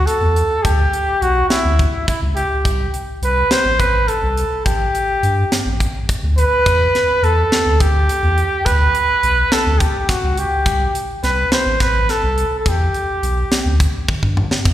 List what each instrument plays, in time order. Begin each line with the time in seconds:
0.06 trumpet A4, closed hi-hat
0.21 sub bass E2
0.36 closed hi-hat
0.63 sub bass D2, trumpet G4, kick, closed hi-hat
0.93 closed hi-hat
1.21 sub bass B1, trumpet F#4, closed hi-hat
1.49 trumpet E4, snare, closed hi-hat
1.65 sub bass D2
1.79 kick, closed hi-hat
2.08 trumpet E4, kick, closed hi-hat
2.22 sub bass C#2
2.35 trumpet G4, closed hi-hat
2.65 sub bass C2, kick, closed hi-hat
2.94 closed hi-hat
3.22 sub bass C2, trumpet B4, closed hi-hat
3.51 trumpet C5, snare, closed hi-hat
3.65 sub bass A1
3.79 trumpet B4, kick, closed hi-hat
4.08 trumpet A4, closed hi-hat
4.22 sub bass C2
4.37 closed hi-hat
4.65 sub bass A1, trumpet G4, kick, closed hi-hat
4.95 closed hi-hat
5.23 sub bass G2, closed hi-hat
5.52 snare, closed hi-hat
5.66 sub bass A1
5.80 kick, closed hi-hat
6.09 kick, closed hi-hat
6.23 sub bass D2
6.38 trumpet B4, closed hi-hat
6.66 sub bass E2, kick, closed hi-hat
6.95 snare, closed hi-hat
7.22 sub bass E2, trumpet A4, closed hi-hat
7.52 snare, closed hi-hat
7.66 sub bass D2
7.80 trumpet G4, kick, closed hi-hat
8.09 closed hi-hat
8.23 sub bass E2
8.38 closed hi-hat
8.65 sub bass D2, trumpet B4, kick, closed hi-hat
8.95 closed hi-hat
9.23 sub bass B1, closed hi-hat
9.52 trumpet A4, snare, closed hi-hat
9.66 sub bass D2
9.80 trumpet G4, kick, closed hi-hat
10.09 trumpet F#4, kick, snare, closed hi-hat
10.23 sub bass C#2
10.38 trumpet G4, closed hi-hat
10.66 sub bass C2, kick, closed hi-hat
10.95 closed hi-hat
11.23 sub bass C2, trumpet B4, snare, closed hi-hat
11.52 trumpet C5, snare, closed hi-hat
11.66 sub bass A1
11.80 trumpet B4, kick, snare, closed hi-hat
12.09 trumpet A4, snare, closed hi-hat
12.23 sub bass C2
12.38 closed hi-hat
12.59 trumpet A4
12.66 sub bass E2, trumpet G4, kick, closed hi-hat
12.94 closed hi-hat
13.23 sub bass B1, closed hi-hat
13.52 snare, closed hi-hat
13.65 sub bass D2
13.80 kick, closed hi-hat
14.08 kick, high tom
14.23 sub bass G2, kick
14.37 mid tom
14.51 snare
14.65 sub bass E2, kick, crash